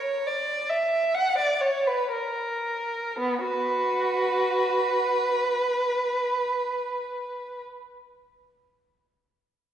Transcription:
0.00 0.26 C#5 medium
0.27 0.70 D5 medium
0.69 1.14 E5 medium
1.15 1.37 F#5 medium
1.38 1.61 D5 medium
1.61 1.85 C#5 medium
1.87 2.11 B4 medium
2.13 3.16 A#4 medium
3.19 3.42 B3 medium
3.42 5.47 F#4 medium
3.42 7.61 B4 medium

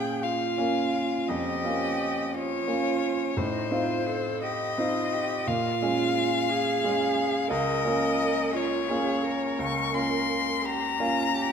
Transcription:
0.00 3.41 A#2 soft
0.00 0.54 A#3 soft
0.00 0.54 C#4 soft
0.00 0.55 F4 soft
0.00 0.25 G#4 medium
0.00 0.24 G5 medium
0.23 1.31 F4 medium
0.23 1.30 F5 medium
0.57 1.25 A#3 soft
0.57 1.25 C#4 soft
0.57 1.26 F4 soft
1.29 1.64 F2 soft
1.29 2.35 G4 medium
1.29 2.36 D#5 medium
1.65 2.65 A#3 soft
1.65 2.65 C#4 soft
1.65 2.65 F4 soft
2.33 3.38 F4 medium
2.33 3.39 C#5 medium
2.68 3.34 A#3 soft
2.68 3.34 C#4 soft
2.68 3.34 F4 soft
3.37 3.71 A2 soft
3.37 3.73 D#4 medium
3.37 4.42 C5 medium
3.71 4.74 C4 soft
3.71 4.74 D#4 soft
3.71 4.08 F4 medium
3.71 4.74 F4 soft
4.07 4.44 A4 medium
4.42 4.79 G4 medium
4.42 5.48 D#5 medium
4.78 5.44 C4 soft
4.78 5.44 D#4 soft
4.78 5.14 F4 soft
4.78 5.44 F4 soft
5.13 5.48 G4 medium
5.47 5.81 A#2 soft
5.47 6.51 F4 medium
5.47 7.50 F5 medium
5.82 6.79 G#3 soft
5.82 6.79 C#4 soft
5.82 6.80 F4 soft
6.50 7.49 G#4 medium
6.84 7.47 G#3 soft
6.84 7.48 C#4 soft
6.84 7.48 F4 soft
7.50 7.84 C#2 medium
7.50 8.55 A#4 medium
7.50 8.58 D#5 medium
7.85 8.86 A#3 soft
7.85 8.86 C#4 soft
7.85 8.87 F4 soft
8.54 8.90 F4 medium
8.54 9.62 C#5 medium
8.88 9.55 A#3 soft
8.88 9.55 C#4 soft
8.88 9.56 F4 soft
8.88 9.25 G#4 medium
9.23 10.65 A#4 medium
9.59 9.93 C#2 soft
9.59 9.96 C#6 medium
9.93 10.96 A#3 soft
9.93 10.96 C#4 soft
9.93 10.97 F4 soft
9.93 10.67 C6 medium
10.64 11.01 G4 medium
10.64 11.52 A#5 medium
10.99 11.52 A#3 soft
10.99 11.52 C#4 soft
10.99 11.35 F4 soft
10.99 11.52 F4 soft
11.35 11.52 G4 medium

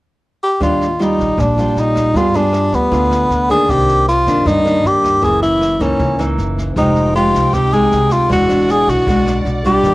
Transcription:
0.43 0.60 G4 medium
0.60 1.14 D#2 medium
0.60 1.36 D#3 medium
0.60 0.85 G3 medium
0.60 0.86 D4 soft
0.60 0.86 F4 medium
0.60 1.04 F4 medium
0.60 kick medium
0.60 cross-stick medium
0.60 snare soft
0.81 snare soft
0.99 1.54 G3 soft
0.99 1.42 D#4 medium
0.99 1.54 F4 medium
0.99 snare soft
1.19 1.36 A#1 medium
1.19 kick soft
1.19 snare soft
1.38 1.73 A#1 medium
1.38 2.13 A#2 medium
1.38 1.81 D4 medium
1.38 kick medium
1.38 cross-stick medium
1.38 snare soft
1.58 2.13 G3 medium
1.58 2.14 F4 medium
1.58 snare soft
1.76 2.12 A#1 medium
1.76 2.18 D#4 medium
1.76 snare soft
1.95 kick soft
1.95 cross-stick medium
1.95 snare soft
2.14 2.68 G2 medium
2.14 2.90 G3 medium
2.14 2.26 B3 medium
2.14 2.26 F4 soft
2.14 2.38 F4 medium
2.14 2.27 G#4 medium
2.14 kick medium
2.14 snare soft
2.34 2.89 B3 medium
2.34 2.76 D4 medium
2.34 2.89 F4 medium
2.34 2.89 G#4 medium
2.34 snare soft
2.53 cross-stick medium
2.53 snare soft
2.72 2.90 D2 medium
2.72 3.50 B3 medium
2.72 kick soft
2.72 snare soft
2.91 3.27 D2 medium
2.91 3.66 D3 medium
2.91 3.30 B3 soft
2.91 3.30 F4 medium
2.91 3.30 G#4 medium
2.91 kick medium
2.91 snare soft
3.11 cross-stick medium
3.11 snare soft
3.29 3.65 D2 medium
3.29 snare soft
3.49 4.04 D#3 medium
3.49 4.04 A#3 medium
3.49 4.04 D4 medium
3.49 3.72 G#4 medium
3.49 kick soft
3.49 snare soft
3.69 4.22 C2 medium
3.69 4.44 C3 medium
3.69 4.08 G4 medium
3.69 kick medium
3.69 cross-stick medium
3.69 snare soft
3.88 snare soft
4.08 4.49 F4 medium
4.08 snare soft
4.26 4.44 G2 medium
4.26 4.62 D#3 medium
4.26 4.62 A#3 medium
4.26 4.62 D4 medium
4.26 kick soft
4.26 snare soft
4.46 4.81 G2 loud
4.46 5.21 G2 medium
4.46 4.88 D#4 medium
4.46 kick medium
4.46 cross-stick medium
4.46 snare soft
4.65 5.19 D#3 medium
4.65 5.20 A#3 medium
4.65 5.20 D4 medium
4.65 snare soft
4.84 5.20 G2 medium
4.84 5.26 G4 medium
4.84 snare soft
5.04 kick soft
5.04 cross-stick medium
5.04 snare soft
5.21 5.76 F#1 medium
5.21 5.97 F#2 medium
5.21 5.77 E3 soft
5.21 5.77 A#3 medium
5.21 5.42 G#4 medium
5.21 kick medium
5.21 snare soft
5.42 5.84 E4 medium
5.42 snare soft
5.61 cross-stick medium
5.61 snare soft
5.80 5.98 C#2 medium
5.80 6.16 E3 medium
5.80 6.16 A#3 medium
5.80 6.31 C#4 medium
5.80 6.16 D#4 medium
5.80 kick soft
5.80 snare soft
5.99 6.35 C#2 loud
5.99 6.75 C#3 soft
5.99 kick medium
5.99 snare soft
6.19 6.73 E3 medium
6.19 6.73 A#3 medium
6.19 6.73 D#4 medium
6.19 cross-stick medium
6.19 snare soft
6.38 6.74 F#1 medium
6.38 snare soft
6.57 kick soft
6.57 snare soft
6.74 7.30 F1 medium
6.74 7.51 F3 soft
6.74 7.12 G#3 medium
6.74 8.28 D#4 medium
6.74 7.12 D#4 medium
6.74 7.13 D#4 medium
6.74 7.12 G4 medium
6.74 8.28 G5 medium
6.74 kick medium
6.74 cross-stick medium
6.74 snare soft
6.95 snare soft
7.14 7.69 G#3 soft
7.14 7.69 D#4 soft
7.14 7.56 F4 loud
7.14 7.70 G4 medium
7.14 snare soft
7.34 7.52 C2 medium
7.34 kick soft
7.34 snare soft
7.53 7.89 C2 medium
7.53 8.28 C3 medium
7.53 7.75 G4 medium
7.53 kick medium
7.53 cross-stick medium
7.53 snare soft
7.72 8.28 G#3 medium
7.72 8.29 D#4 medium
7.72 8.14 G#4 loud
7.72 snare soft
7.91 8.28 C2 medium
7.91 snare soft
8.10 8.31 F4 medium
8.10 kick soft
8.10 cross-stick soft
8.10 snare soft
8.29 8.83 E1 medium
8.29 9.05 E3 soft
8.29 8.46 G#3 medium
8.29 8.46 D4 medium
8.29 8.46 F#4 medium
8.29 8.73 F#4 medium
8.29 9.94 D5 medium
8.29 9.82 F#5 medium
8.29 kick medium
8.29 snare soft
8.49 9.04 G#3 medium
8.49 9.04 D4 medium
8.49 9.04 F#4 medium
8.49 snare soft
8.68 8.92 G#4 loud
8.68 cross-stick medium
8.68 snare soft
8.87 9.05 B1 medium
8.87 9.47 F#4 medium
8.87 kick soft
8.87 snare soft
9.07 9.43 B1 medium
9.07 9.82 B2 medium
9.07 9.62 G#3 soft
9.07 9.62 D4 medium
9.07 9.62 F#4 medium
9.07 kick medium
9.07 snare soft
9.26 cross-stick medium
9.26 snare soft
9.45 9.81 B1 medium
9.45 snare soft
9.64 9.94 G3 medium
9.64 9.94 D4 medium
9.64 9.94 F4 medium
9.64 9.94 G4 loud
9.64 kick soft
9.64 snare soft
9.83 9.94 D#2 medium
9.83 9.94 D#3 medium
9.83 9.94 G4 medium
9.83 9.94 F5 medium
9.83 kick medium
9.83 cross-stick medium
9.83 snare soft

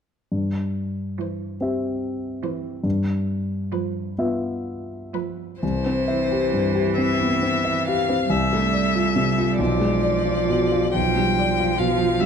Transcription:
0.32 1.57 G2 soft
1.18 1.50 E3 soft
1.18 1.51 C5 soft
1.61 2.81 C4 soft
1.61 2.81 G4 soft
1.61 2.82 E5 soft
2.43 2.74 E3 soft
2.43 2.74 C5 soft
2.84 4.14 G2 soft
3.72 4.06 F3 soft
3.72 4.06 B4 soft
4.18 5.58 B3 soft
4.18 5.58 F4 soft
4.18 5.58 E5 soft
5.14 5.50 F3 soft
5.14 5.50 B4 soft
5.61 8.27 C2 soft
5.61 8.27 E3 soft
5.61 6.94 C5 soft
5.86 6.22 C4 soft
6.08 6.44 E5 soft
6.32 6.68 G4 soft
6.54 6.90 G2 soft
6.75 7.11 G4 soft
6.98 7.34 C4 soft
6.98 7.86 E5 soft
7.21 7.43 B3 soft
7.43 7.78 C4 soft
7.65 8.00 E5 soft
7.87 8.23 G4 soft
7.87 8.31 F5 soft
8.09 8.31 C4 soft
8.30 9.55 C2 soft
8.30 9.61 G3 soft
8.30 9.58 E5 soft
8.53 8.87 A3 soft
8.73 9.08 D5 soft
8.95 9.29 F4 soft
9.16 9.50 C3 soft
9.38 9.60 F4 soft
9.58 10.91 B1 soft
9.58 10.94 F3 soft
9.58 10.92 D5 soft
9.80 10.16 G#3 soft
10.03 10.40 D5 soft
10.25 10.63 F4 soft
10.50 10.86 B2 soft
10.72 10.95 F4 soft
10.94 12.26 B1 soft
10.94 12.22 F3 soft
10.94 11.80 G5 soft
11.16 11.51 G3 soft
11.39 11.72 D5 soft
11.60 11.93 F4 soft
11.78 12.13 B2 soft
11.78 12.22 F5 soft
12.01 12.26 F4 soft
12.21 12.26 G3 soft
12.21 12.26 E5 soft

